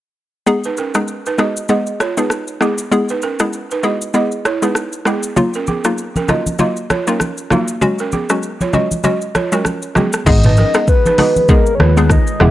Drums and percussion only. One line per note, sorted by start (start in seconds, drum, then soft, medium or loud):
0.47 shaker medium
0.64 shaker soft
0.77 shaker soft
0.94 cross-stick medium
0.94 shaker medium
1.08 shaker medium
1.26 shaker medium
1.38 cross-stick medium
1.38 shaker soft
1.57 shaker loud
1.69 shaker medium
1.87 shaker soft
2.00 cross-stick medium
2.00 shaker soft
2.17 shaker medium
2.30 cross-stick medium
2.30 shaker medium
2.48 shaker medium
2.61 cross-stick medium
2.61 shaker soft
2.78 shaker medium
2.92 shaker medium
3.09 shaker soft
3.22 shaker soft
3.39 cross-stick medium
3.39 shaker medium
3.53 shaker medium
3.71 shaker medium
3.83 shaker soft
4.01 shaker medium
4.14 shaker medium
4.32 shaker soft
4.45 cross-stick medium
4.45 shaker soft
4.62 shaker medium
4.75 cross-stick medium
4.75 shaker medium
4.93 shaker medium
5.05 cross-stick medium
5.05 shaker soft
5.23 shaker medium
5.36 low conga medium
5.36 shaker medium
5.54 shaker soft
5.67 high conga medium
5.67 shaker soft
5.84 cross-stick medium
5.84 shaker medium
5.98 shaker medium
6.16 high conga medium
6.16 shaker medium
6.28 cross-stick medium
6.28 high conga medium
6.28 low conga medium
6.28 shaker soft
6.46 high conga medium
6.46 shaker loud
6.59 low conga medium
6.59 shaker medium
6.76 shaker soft
6.90 cross-stick loud
6.90 high conga medium
6.90 shaker soft
7.07 shaker medium
7.20 cross-stick medium
7.20 high conga medium
7.20 shaker medium
7.37 shaker medium
7.50 cross-stick medium
7.50 high conga medium
7.50 low conga medium
7.50 shaker soft
7.68 shaker loud
7.81 low conga medium
7.81 shaker medium
7.99 shaker soft
8.12 high conga medium
8.12 shaker soft
8.29 cross-stick medium
8.29 shaker medium
8.43 shaker medium
8.61 high conga medium
8.61 shaker medium
8.73 high conga medium
8.73 low conga medium
8.73 shaker soft
8.91 high conga medium
8.91 shaker loud
9.04 low conga medium
9.04 shaker medium
9.21 shaker soft
9.35 cross-stick loud
9.35 high conga medium
9.35 shaker soft
9.52 shaker medium
9.65 cross-stick medium
9.65 high conga medium
9.65 shaker medium
9.82 shaker medium
9.95 cross-stick medium
9.95 high conga medium
9.95 low conga medium
9.95 shaker soft
10.13 cross-stick medium
10.13 shaker loud
10.26 kick loud
10.26 crash loud
10.26 low conga medium
10.26 shaker medium
10.43 mid tom medium
10.43 shaker soft
10.57 high conga medium
10.57 shaker medium
10.74 cross-stick loud
10.74 shaker medium
10.88 kick medium
10.88 shaker medium
11.06 high conga medium
11.06 shaker medium
11.18 cross-stick medium
11.18 open hi-hat medium
11.18 high conga medium
11.18 low conga medium
11.36 high conga medium
11.36 shaker medium
11.48 kick loud
11.48 low conga medium
11.48 shaker medium
11.66 shaker soft
11.80 cross-stick loud
11.80 high conga medium
11.97 shaker medium
12.10 kick loud
12.10 cross-stick medium
12.10 shaker medium
12.27 shaker medium
12.40 cross-stick medium
12.40 high conga medium
12.40 low conga medium